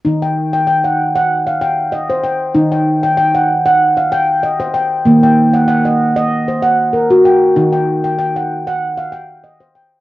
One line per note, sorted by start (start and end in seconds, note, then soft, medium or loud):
0.05 2.51 D#3 medium
0.05 0.36 D#4 medium
0.22 0.52 G5 soft
0.53 0.66 G5 soft
0.67 0.99 G5 medium
0.84 1.14 F#5 soft
1.16 1.47 F#5 medium
1.47 1.92 F5 soft
1.61 1.93 G5 medium
1.92 2.41 D#5 medium
2.10 2.41 C5 medium
2.24 2.71 G5 soft
2.55 5.01 D#3 medium
2.55 2.86 D#4 medium
2.72 3.02 G5 soft
3.03 3.16 G5 medium
3.17 3.49 G5 medium
3.35 3.65 F#5 medium
3.66 3.97 F#5 medium
3.97 4.43 F5 medium
4.12 4.43 G5 medium
4.43 4.91 D#5 medium
4.60 4.91 C5 medium
4.74 5.22 G5 medium
5.05 7.52 D#3 medium
5.05 5.37 A#3 medium
5.23 5.68 G5 medium
5.53 5.67 F#5 medium
5.68 5.99 F#5 medium
5.85 6.15 D#5 soft
6.16 6.47 D#5 medium
6.48 6.93 C5 medium
6.62 6.93 F#5 medium
6.93 7.41 A#4 medium
7.10 7.41 F#4 medium
7.25 7.71 G5 medium
7.56 10.01 D#3 medium
7.56 7.87 D#4 medium
7.73 8.03 G5 soft
8.04 8.17 G5 soft
8.19 8.50 G5 medium
8.36 8.66 F#5 soft
8.67 8.98 F#5 medium
8.97 9.43 F5 medium
9.12 9.43 G5 medium
9.43 9.91 D#5 medium
9.60 9.91 C5 medium
9.75 10.01 G5 soft